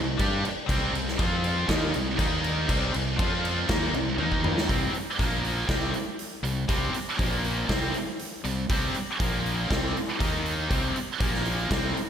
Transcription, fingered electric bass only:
Already playing: C2
0.19 G2
0.44 muted fingered electric bass stroke
0.69 C2
0.92 C2
1.19 F2
1.68 D#2
1.95 C2
2.19 D#2
2.69 C2
2.95 C2
3.19 F2
3.69 D#2
3.93 C2
4.18 D#2
4.69 C2
4.91 muted fingered electric bass stroke
5.19 A#1
5.69 C2
6.43 C2
6.69 C2
6.93 muted fingered electric bass stroke
7.19 A#1
7.69 C2
8.44 C2
8.70 C2
8.94 muted fingered electric bass stroke
9.20 A#1
9.70 C2
10.20 D#2
10.70 C2
10.96 muted fingered electric bass stroke
11.20 A#1
11.71 C2

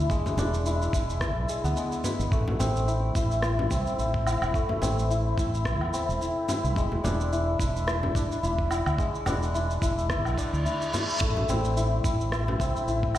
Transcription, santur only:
Already playing: C4 D4 E4
0.10 G#3
0.38 D4
0.66 E4
0.93 E4
1.21 E4
1.49 G#3
1.64 B3
1.77 G#3
2.05 B4
2.32 A3
2.59 C4
2.88 E4
3.15 E4
3.43 E4
3.71 C4
3.99 E4
4.27 E4
4.55 A3
4.82 C4
5.10 E4
5.38 E4
5.65 E4
5.93 C4
6.21 E4
6.49 E4
6.77 G#3
7.04 D4
7.32 E4
7.60 E4
7.87 E4
8.15 D4
8.43 E4
8.70 E4
8.99 G#3
9.27 D4
9.55 E4
9.82 E4
10.10 E4
10.38 D4
10.65 E4
10.93 E4
11.21 A3
11.49 C4
11.77 E4
12.05 E4
12.32 E4
12.60 C4
12.88 E4

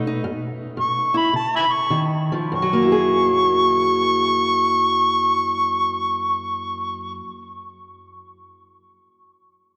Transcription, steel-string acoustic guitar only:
Already playing: B2 A3
0.07 D#4
0.24 F#2
0.77 F#2
1.14 E4
1.33 C#3
1.90 D#3
2.32 F3
2.52 F#2
2.62 F#3
2.73 A#3
2.82 E4
2.92 G#4

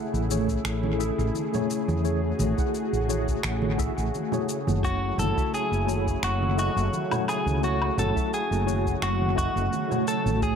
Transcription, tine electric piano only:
Already playing: A3 E4 G#4 F#5
0.30 A3 E4 G#4 C#5
0.98 A3 E4 G#4 E5
1.53 A3 E4 G#4 C#5
2.03 A3 E4 G#4 C#5
2.57 A3 E4 G#4 F#5
3.08 A3 E4 G#4 C#5
3.77 A3 E4 G#4 E5
4.32 A3 E4 G#4 C#5
4.83 A3 E4 F#4 C#5
5.36 A3 E4 F#4 E5
5.86 A3 E4 F#4 C#5
6.57 A3 E4 F#4 D#5
7.10 A3 E4 F#4 C#5
7.61 A3 E4 F#4 C#5
8.14 A3 E4 F#4 E5
8.65 A3 E4 F#4 C#5
9.35 A3 E4 F#4 D#5
9.89 A3 E4 F#4 C#5
10.41 A3 E4 G#4 C#5

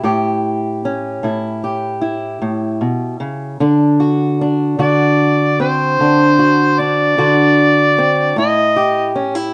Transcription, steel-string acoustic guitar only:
Already playing: E4
0.03 A2 G4
0.85 C#4
1.23 A2 E4
1.64 G4
2.01 E4
2.42 A2
2.81 B2
3.20 C#3
3.60 D3 D4
4.00 F#4
4.41 D4
4.79 D3 F#4
5.60 C4
6.00 D3 D4
6.39 F#4
6.80 D4
7.18 D3 F#4
7.98 C4
8.36 A2 E4
8.76 G4
9.16 C#4
9.35 E4

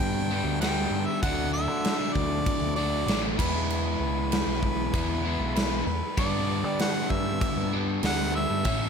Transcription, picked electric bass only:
0.00 G2
0.44 D2
0.91 G2
1.22 D2
1.68 D3
2.15 D2
2.61 D2
3.06 A1
3.39 E2
4.00 C#2
4.47 B1
4.93 E2
5.39 B1
5.87 E2
6.18 G2
6.64 G3
7.11 G2
7.57 G2
8.03 D2
8.50 G2
8.65 A2

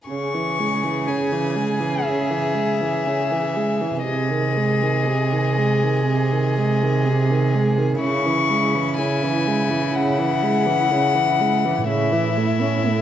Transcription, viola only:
0.09 C#3
0.34 E3
0.60 G#3
0.83 E3
1.08 C#3
1.32 E3
1.56 G#3
1.80 E3
2.05 C#3
2.30 E3
2.55 G#3
2.81 E3
3.07 C#3
3.32 E3
3.56 G#3
3.81 E3
4.06 C3
4.30 D#3
4.57 G#3
4.82 D#3
5.06 C3
5.33 D#3
5.58 G#3
5.84 D#3
6.07 C3
6.33 D#3
6.58 G#3
6.83 D#3
7.06 C3
7.31 D#3
7.55 G#3
7.78 D#3
8.02 C#3
8.26 E3
8.50 G#3
8.75 E3
8.99 C#3
9.23 E3
9.47 G#3
9.70 E3
9.95 C#3
10.19 E3
10.43 G#3
10.66 E3
10.91 C#3
11.15 E3
11.40 G#3
11.65 E3
11.88 C#3
12.13 E3
12.37 A3
12.61 C#4
12.87 A3

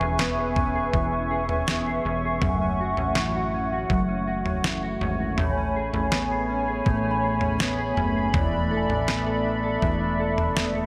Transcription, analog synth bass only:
0.01 E1
0.93 E1
2.05 E1
2.42 F#1
2.97 A1
3.90 F#1
5.01 G#1
5.38 A1
5.93 A1
6.86 A1
7.97 F#1
8.34 E1
8.89 A1
9.83 E1

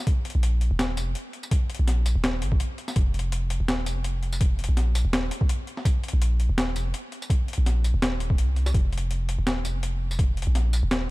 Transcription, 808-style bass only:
0.35 A#1
0.71 D#1
0.97 F1
1.79 A#1
2.16 D#1
2.42 G#1
2.96 F1
3.60 D#1
3.86 F1
4.69 A#1
5.05 D#1
6.13 A#1
6.49 D#1
6.76 F1
7.58 A#1
7.94 D#1
8.38 C2
8.74 F1
9.39 D#1
9.65 F1
10.47 A#1
10.83 D#1

